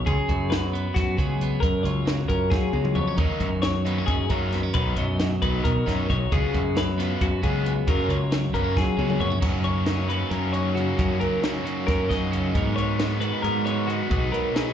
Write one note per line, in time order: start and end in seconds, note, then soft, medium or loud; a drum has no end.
0.00 0.51 F#3 medium
0.00 0.11 F#4 medium
0.06 0.16 C#2 medium
0.06 0.51 C#3 medium
0.06 0.51 G#4 medium
0.06 1.60 G#4 medium
0.06 kick loud
0.06 closed hi-hat medium
0.28 0.86 F#2 loud
0.28 0.97 F#4 medium
0.28 kick medium
0.28 closed hi-hat medium
0.50 1.18 F#3 medium
0.50 0.95 B4 medium
0.50 snare loud
0.50 closed hi-hat medium
0.73 1.40 B3 medium
0.73 closed hi-hat medium
0.94 1.15 F#2 medium
0.94 1.17 F#4 medium
0.94 1.85 F#4 medium
0.94 kick loud
0.94 snare soft
0.94 closed hi-hat medium
1.17 1.56 C#2 loud
1.17 2.06 F#3 medium
1.17 1.62 G#4 medium
1.17 kick medium
1.17 closed hi-hat medium
1.41 1.64 B3 medium
1.41 closed hi-hat medium
1.60 3.18 F#2 medium
1.60 1.82 F#2 medium
1.60 1.83 A#4 medium
1.60 3.18 A#4 medium
1.60 kick loud
1.60 closed hi-hat medium
1.83 2.22 C#2 medium
1.83 2.52 F4 medium
1.83 2.28 C#5 medium
1.83 closed hi-hat medium
2.06 2.74 F#3 medium
2.06 snare loud
2.06 closed hi-hat medium
2.28 2.48 F#2 medium
2.28 2.96 C#4 medium
2.28 2.51 A#4 medium
2.28 kick medium
2.28 closed hi-hat medium
2.50 2.71 F#3 medium
2.50 3.16 F4 medium
2.50 2.96 G#4 medium
2.50 kick loud
2.50 snare medium
2.73 2.92 C#2 medium
2.73 3.62 F#3 medium
2.73 high tom medium
2.85 mid tom medium
2.95 3.15 F2 medium
2.95 3.07 B3 medium
2.95 3.17 C#5 medium
2.95 mid tom medium
3.07 3.19 C#4 soft
3.17 3.28 D#2 medium
3.17 4.72 D#3 medium
3.17 3.47 D#3 medium
3.17 3.48 F#3 medium
3.17 3.48 A#3 medium
3.17 3.48 D#4 medium
3.17 3.62 A#4 medium
3.17 4.72 A#4 medium
3.17 kick loud
3.17 closed hi-hat medium
3.40 3.97 F#2 loud
3.40 4.10 F#4 medium
3.40 kick medium
3.40 closed hi-hat medium
3.62 4.30 F#3 medium
3.62 4.06 C#5 medium
3.62 snare loud
3.62 closed hi-hat medium
3.85 4.15 D#3 medium
3.85 4.15 F#3 medium
3.85 4.15 A#3 medium
3.85 3.98 B3 medium
3.85 4.14 D#4 medium
3.85 closed hi-hat medium
3.98 4.53 C#4 soft
4.06 4.27 F#2 medium
4.06 4.29 G#4 medium
4.06 kick loud
4.06 closed hi-hat medium
4.10 4.98 F#4 medium
4.29 4.68 F#2 medium
4.29 4.60 D#3 medium
4.29 5.19 F#3 medium
4.29 4.60 F#3 medium
4.29 4.59 A#3 medium
4.29 4.59 D#4 loud
4.29 4.74 A#4 medium
4.29 kick medium
4.29 closed hi-hat medium
4.53 4.63 B3 medium
4.53 snare soft
4.53 closed hi-hat medium
4.63 4.74 C#4 soft
4.74 4.94 B1 medium
4.74 6.28 B2 medium
4.74 5.04 D#3 medium
4.74 5.04 F#3 medium
4.74 5.04 B3 medium
4.74 5.04 D#4 medium
4.74 6.28 A#4 medium
4.74 4.96 B4 medium
4.74 kick loud
4.74 closed hi-hat medium
4.96 5.34 F#2 medium
4.96 5.65 F#4 medium
4.96 5.41 D#5 medium
4.96 closed hi-hat medium
5.19 5.86 F#3 medium
5.19 snare loud
5.19 closed hi-hat medium
5.42 5.61 B1 medium
5.42 5.72 D#3 medium
5.42 5.71 F#3 medium
5.42 5.71 B3 medium
5.42 6.09 D#4 medium
5.42 5.71 D#4 medium
5.42 5.63 B4 medium
5.42 kick medium
5.42 closed hi-hat medium
5.64 5.83 B2 medium
5.64 6.36 F#4 medium
5.64 6.08 A#4 medium
5.64 kick medium
5.64 closed hi-hat medium
5.86 6.06 F#2 medium
5.86 6.16 D#3 medium
5.86 6.75 F#3 medium
5.86 6.16 F#3 medium
5.86 6.16 B3 medium
5.86 6.15 D#4 medium
5.86 kick medium
5.86 snare soft
5.86 closed hi-hat medium
6.10 6.28 B1 medium
6.10 6.29 D#4 medium
6.10 6.31 C#5 medium
6.10 kick medium
6.10 closed hi-hat medium
6.32 6.41 C#2 medium
6.32 6.76 C#3 medium
6.32 6.60 C#3 medium
6.32 6.61 G#3 medium
6.32 6.61 B3 medium
6.32 6.61 F4 medium
6.32 6.76 G#4 medium
6.32 7.85 G#4 medium
6.32 kick loud
6.32 closed hi-hat medium
6.54 7.11 F#2 loud
6.54 7.21 F#4 medium
6.54 kick medium
6.54 closed hi-hat soft
6.76 7.42 F#3 medium
6.76 7.21 B4 medium
6.76 snare loud
6.76 closed hi-hat medium
6.98 7.28 C#3 medium
6.98 7.28 G#3 medium
6.98 7.64 B3 medium
6.98 7.28 B3 medium
6.98 7.27 F4 loud
6.98 snare soft
6.98 closed hi-hat medium
7.21 7.40 F#2 medium
7.21 8.09 F#4 medium
7.21 7.43 F#4 medium
7.21 kick medium
7.21 closed hi-hat medium
7.43 7.81 C#2 medium
7.43 7.72 C#3 medium
7.43 8.30 F#3 medium
7.43 7.72 G#3 medium
7.43 7.72 B3 medium
7.43 7.72 F4 medium
7.43 7.87 G#4 medium
7.43 kick medium
7.43 closed hi-hat medium
7.65 7.87 B3 medium
7.65 closed hi-hat medium
7.88 8.06 F#2 medium
7.88 9.39 F#2 medium
7.88 8.16 C#3 medium
7.88 8.16 F#3 medium
7.88 8.17 A#3 medium
7.88 8.17 C#4 medium
7.88 8.10 A#4 medium
7.88 9.40 A#4 medium
7.88 kick loud
7.88 closed hi-hat medium
8.08 8.46 C#2 medium
8.08 8.76 F4 medium
8.08 8.54 C#5 medium
8.08 closed hi-hat medium
8.31 8.96 F#3 medium
8.31 snare loud
8.31 closed hi-hat medium
8.53 8.73 F#2 medium
8.53 8.83 C#3 medium
8.53 8.83 F#3 medium
8.53 8.83 A#3 loud
8.53 8.64 B3 medium
8.53 8.83 C#4 loud
8.53 8.76 A#4 medium
8.53 kick medium
8.53 closed hi-hat medium
8.64 9.19 C#4 soft
8.77 8.95 F#3 medium
8.77 9.41 F4 medium
8.77 9.21 G#4 medium
8.77 kick loud
8.77 snare medium
8.97 9.16 C#2 medium
8.97 9.28 C#3 medium
8.97 10.07 F#3 medium
8.97 9.28 F#3 medium
8.97 9.27 A#3 medium
8.97 9.27 C#4 medium
8.97 high tom medium
9.10 mid tom medium
9.19 9.39 F#2 medium
9.19 9.30 B3 medium
9.19 9.43 C#5 medium
9.19 mid tom medium
9.30 9.41 C#4 soft
9.30 floor tom medium
9.40 10.96 F#2 medium
9.40 10.13 F#2 medium
9.40 10.18 F#2 medium
9.40 9.86 C#3 medium
9.40 9.86 D#4 soft
9.40 10.08 F#4 medium
9.40 9.64 A#4 medium
9.40 kick loud
9.40 crash medium
9.45 9.68 F#3 medium
9.45 9.66 A#3 medium
9.45 9.64 C#4 medium
9.64 9.89 A#3 medium
9.64 9.90 C#4 medium
9.64 10.30 A#4 medium
9.64 10.09 C#5 medium
9.64 closed hi-hat soft
9.68 9.88 F#3 medium
9.86 10.11 C#3 medium
9.86 10.11 F#3 medium
9.86 10.10 A#3 medium
9.86 10.53 D#4 soft
9.86 snare loud
9.86 closed hi-hat medium
9.91 10.09 C#4 medium
10.08 11.63 F#3 medium
10.08 10.32 F#3 medium
10.08 10.33 A#3 medium
10.08 10.33 C#4 medium
10.08 10.76 F#4 soft
10.08 10.31 B4 medium
10.08 closed hi-hat medium
10.13 10.56 F#2 medium
10.13 10.30 C#3 medium
10.30 10.88 F#2 medium
10.30 10.56 C#3 medium
10.30 10.55 F#3 medium
10.30 10.55 A#3 medium
10.30 10.99 A#4 medium
10.30 10.52 A#4 medium
10.30 closed hi-hat medium
10.34 10.53 C#4 medium
10.53 10.78 F#3 medium
10.53 10.78 A#3 medium
10.53 10.79 C#4 medium
10.53 10.97 D#4 medium
10.53 10.76 C#5 medium
10.53 closed hi-hat medium
10.57 10.96 F#2 medium
10.57 10.75 C#3 medium
10.75 10.98 C#3 medium
10.75 10.97 C#3 medium
10.75 10.99 F#3 medium
10.75 11.20 F#4 medium
10.75 10.99 F#4 medium
10.75 closed hi-hat soft
10.79 11.00 A#3 medium
10.79 10.99 C#4 medium
10.97 11.43 F#2 medium
10.97 12.55 F#2 medium
10.97 11.18 F#2 medium
10.97 11.41 C#3 medium
10.97 11.23 F#3 medium
10.97 11.22 A#3 medium
10.97 11.19 C#4 medium
10.97 11.43 D#4 soft
10.97 11.64 F#4 medium
10.97 11.20 A#4 medium
10.97 kick medium
10.97 closed hi-hat medium
11.20 11.44 F#3 soft
11.20 11.45 A#3 medium
11.20 11.45 C#4 medium
11.20 11.85 A#4 soft
11.20 11.41 A#4 medium
11.20 closed hi-hat medium
11.41 11.67 C#3 medium
11.41 11.67 F#3 medium
11.41 11.65 A#3 medium
11.41 12.10 D#4 medium
11.41 11.86 F#4 medium
11.41 snare loud
11.41 closed hi-hat medium
11.46 11.64 C#4 medium
11.64 13.20 F#3 medium
11.64 11.89 F#3 medium
11.64 11.88 A#3 medium
11.64 11.90 C#4 medium
11.64 12.32 F#4 soft
11.64 closed hi-hat medium
11.68 12.12 F#2 medium
11.68 11.86 C#3 medium
11.86 12.07 F#2 medium
11.86 12.11 C#3 medium
11.86 12.11 F#3 medium
11.86 12.09 A#3 medium
11.86 12.52 A#4 medium
11.86 12.10 A#4 medium
11.86 kick medium
11.86 snare soft
11.86 closed hi-hat medium
11.91 12.08 C#4 medium
12.09 12.48 F#2 medium
12.09 12.53 F#2 medium
12.09 12.30 C#3 medium
12.09 12.32 F#3 medium
12.09 12.32 A#3 medium
12.09 12.33 C#4 medium
12.09 12.55 D#4 medium
12.09 12.54 D#5 medium
12.09 kick medium
12.09 snare soft
12.09 closed hi-hat medium
12.31 12.53 C#3 medium
12.31 12.54 C#3 medium
12.31 12.54 F#3 medium
12.31 12.54 A#3 medium
12.31 12.55 C#4 medium
12.31 12.56 F#4 medium
12.31 closed hi-hat medium
12.53 12.99 G#2 medium
12.53 13.31 G#2 medium
12.53 14.09 G#2 medium
12.53 12.97 D#3 medium
12.53 12.79 G#3 medium
12.53 12.77 B3 loud
12.53 12.99 B3 medium
12.53 12.75 D#4 medium
12.53 13.21 F#4 soft
12.53 12.76 A#4 medium
12.53 kick loud
12.53 closed hi-hat medium
12.76 12.99 G#3 medium
12.76 13.01 B3 medium
12.76 13.01 D#4 medium
12.76 13.42 A#4 medium
12.76 13.20 C#5 medium
12.76 closed hi-hat medium
12.98 13.22 D#3 medium
12.98 13.21 G#3 medium
12.98 13.64 B3 medium
12.98 13.21 B3 medium
12.98 13.20 D#4 medium
12.98 snare loud
12.98 closed hi-hat medium
13.20 13.68 G#2 medium
13.20 13.41 D#3 medium
13.20 14.08 G#3 medium
13.20 13.43 G#3 medium
13.20 13.44 B3 medium
13.20 13.45 D#4 medium
13.20 13.88 F#4 medium
13.20 13.42 B4 medium
13.20 closed hi-hat medium
13.42 14.01 G#2 medium
13.42 13.67 D#3 medium
13.42 13.66 G#3 medium
13.42 13.66 B3 medium
13.42 13.65 D#4 medium
13.42 13.65 A#4 medium
13.42 14.08 A#4 medium
13.42 closed hi-hat medium
13.65 13.87 D#3 medium
13.65 13.88 G#3 medium
13.65 14.09 B3 medium
13.65 13.89 B3 medium
13.65 13.91 D#4 medium
13.65 13.88 C#5 medium
13.65 closed hi-hat medium
13.69 14.11 G#2 medium
13.87 14.08 D#3 medium
13.87 14.09 D#3 medium
13.87 14.10 G#3 medium
13.87 14.11 B3 medium
13.87 14.32 F#4 medium
13.87 14.10 F#4 medium
13.87 closed hi-hat medium
13.92 14.13 D#4 medium
14.09 14.30 B1 loud
14.09 14.73 B2 medium
14.09 14.53 B2 medium
14.09 14.35 F#3 medium
14.09 14.33 B3 medium
14.09 14.55 D#4 medium
14.09 14.73 F#4 medium
14.09 14.32 G#4 medium
14.09 kick medium
14.09 closed hi-hat medium
14.13 14.32 D#4 medium
14.32 14.56 F#3 medium
14.32 14.55 B3 medium
14.32 14.58 D#4 medium
14.32 14.54 A#4 medium
14.32 14.73 B4 medium
14.32 closed hi-hat medium
14.54 14.73 B2 medium
14.54 14.73 F#3 medium
14.54 14.73 B3 medium
14.54 14.73 D#4 medium
14.54 14.73 G#4 medium
14.54 snare loud
14.54 closed hi-hat medium